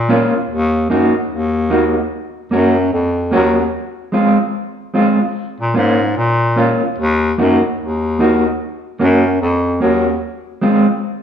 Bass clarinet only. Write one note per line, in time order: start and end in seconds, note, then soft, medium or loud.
0.00 0.27 A#2 loud
0.50 0.86 D#2 loud
0.90 1.12 F#2 medium
1.30 2.03 D#2 loud
2.52 2.88 F#2 loud
2.93 3.29 F2 medium
3.33 3.69 D#2 loud
5.61 5.74 A#2 loud
5.77 6.13 G#2 loud
6.17 6.75 A#2 loud
6.99 7.34 D#2 loud
7.39 7.61 F#2 loud
7.79 8.52 D#2 medium
9.01 9.37 F#2 loud
9.41 9.77 F2 loud
9.82 10.18 D#2 medium